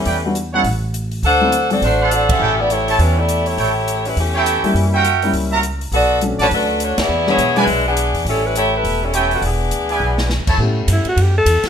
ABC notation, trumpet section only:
X:1
M:4/4
L:1/8
Q:"Swing" 1/4=205
K:Amix
V:1 name="Trumpet section"
[EBdg] z2 [EAcf] z4 | z4 z [DA=cf]3 | [EAcg] z2 [EAca] z4 | [EAcg] z4 [EAcg]3 |
z [F^Aeg]3 z [FAe^a] z2 | z3 [FBda] z4 | z3 [EBd^g] z4 | z6 [EAcg]2 |
z3 [EBd^g]3 z [EAca] | z8 |]